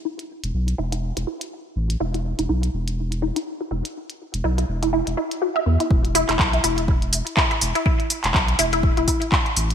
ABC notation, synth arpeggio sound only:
X:1
M:4/4
L:1/16
Q:"Swing 16ths" 1/4=123
K:Clyd
V:1 name="Synth arpeggio sound"
E z4 z E E z E E z4 z | E E z E E z4 z E E z E E z | z4 E E z E E z E z F e B, E | z2 E E z E E z4 z E E z E |
E z4 z E E z E E z4 z |]